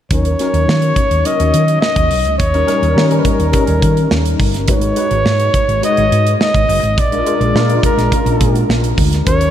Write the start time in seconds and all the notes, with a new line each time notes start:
0.11 D#2 F#3 C#4 D#4 A#4 C#5, kick, closed hi-hat
0.25 closed hi-hat
0.39 F#3 C#4 D#4 A#4, snare, closed hi-hat
0.54 D#2, closed hi-hat
0.68 D#3, snare
0.82 closed hi-hat
0.96 kick, closed hi-hat
1.11 D#2, closed hi-hat
1.24 F#3 C#4 D#4 A#4 D#5, closed hi-hat
1.40 D#2, closed hi-hat
1.54 D#3, closed hi-hat
1.68 closed hi-hat
1.81 D#5, snare
1.96 D#2, kick, closed hi-hat
2.11 B1, open hi-hat
2.25 C#2, closed hi-hat
2.38 D#2 C#5, kick, closed hi-hat
2.53 G3 C#4 D#4 A#4, closed hi-hat
2.66 G3 C#4 D#4 A#4, snare, closed hi-hat
2.82 D#2, closed hi-hat
2.95 D#3 G3 C#4 D#4 A#4, snare
3.10 G3 C#4 D#4 A#4, closed hi-hat
3.19 B4
3.25 A#4, kick, closed hi-hat
3.39 D#2, closed hi-hat
3.52 G3 C#4 D#4 A4, kick, closed hi-hat
3.60 A#4
3.67 D#2, closed hi-hat
3.82 D#3, kick, closed hi-hat
3.97 closed hi-hat
4.11 D#2, snare
4.26 closed hi-hat
4.39 G1, kick, open hi-hat
4.54 snare, closed hi-hat
4.67 G#1 G#3 D#4 F#4 B4 C#5, kick, closed hi-hat
4.81 closed hi-hat
4.95 G#3 D#4 F#4 B4, closed hi-hat
5.11 G#1, closed hi-hat
5.25 G#2, snare
5.39 closed hi-hat
5.54 kick, closed hi-hat
5.68 G#1, closed hi-hat
5.81 G#3 D#4 F#4 B4 D#5, closed hi-hat
5.97 G#1, closed hi-hat
6.12 G#2, closed hi-hat
6.27 closed hi-hat
6.41 D#5, snare
6.54 G#1, kick, closed hi-hat
6.69 F#1, open hi-hat
6.83 G#1, closed hi-hat
6.97 A#1 D5, kick, closed hi-hat
7.11 G#3 D4 F4 A#4, closed hi-hat
7.26 G#3 D4 F4 A#4, closed hi-hat
7.41 A#1, closed hi-hat
7.55 A#2 G#3 D4 F4 A#4, snare
7.68 G#3 D4 F4 A#4, closed hi-hat
7.83 A#4, kick, closed hi-hat
7.97 A#1, snare, closed hi-hat
8.12 G#3 C#4 F4 A#4, kick, closed hi-hat
8.19 D4
8.26 A#1, closed hi-hat
8.40 A#2, kick, closed hi-hat
8.55 closed hi-hat
8.69 A#1, snare
8.84 closed hi-hat
8.98 D2, kick, open hi-hat
9.13 snare, closed hi-hat
9.25 D#2 F#3 C#4 D#4 A#4 C#5, kick, closed hi-hat
9.41 closed hi-hat